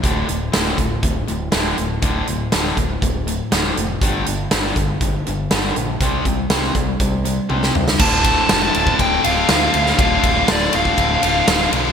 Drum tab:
CC |----------------|----------------|----------------|----------------|
RD |----------------|----------------|----------------|----------------|
HH |x-x-x-x-x-x-x-x-|x-x-x-x-x-x-x-x-|x-x-x-x-x-x-x-x-|x-x-x-x-x-x-----|
SD |----o-------o---|----o-------o---|----o-------o---|----o--------o-o|
T1 |----------------|----------------|----------------|------------o---|
T2 |----------------|----------------|----------------|--------------o-|
BD |o-----o-o-------|o-----o-o-------|o-----o-o-------|o-o---o-o-------|

CC |x---------------|----------------|
RD |--x-x-x-x-x-x-x-|x-x-x-x-x-x-x-x-|
HH |----------------|----------------|
SD |----o-------o--o|----o-------o---|
T1 |----------------|----------------|
T2 |----------------|----------------|
BD |o-o----oo-------|o-o----oo-------|